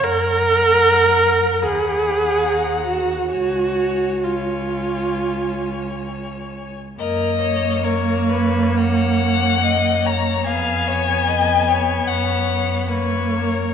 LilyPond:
<<
  \new Staff \with { instrumentName = "Violin" } { \time 4/4 \key fis \major \tempo 4 = 71 ais''2 b''4 ais''4 | gis''4 gis''2~ gis''8. r16 | dis''4 cis''4 fis''4. ais''8 | aes''2 fis''4 cis''4 | }
  \new Staff \with { instrumentName = "Violin" } { \time 4/4 \key fis \major fis''2 fis''2 | cis''4 cis''2~ cis''8. r16 | ais'8 cis''8 ais'8 b'8 cis''4 dis''8 cis''8 | f''8 cis''8 ees''8 cis''4. b'8 ais'8 | }
  \new Staff \with { instrumentName = "Viola" } { \time 4/4 \key fis \major ais'2 gis'4. fis'8 | fis'4 eis'2~ eis'8 r8 | ais1 | ces'2. ais4 | }
  \new Staff \with { instrumentName = "Cello" } { \clef bass \time 4/4 \key fis \major fis,2 dis,2 | cis,2.~ cis,8. r16 | fis,1 | f,2 fis,2 | }
>>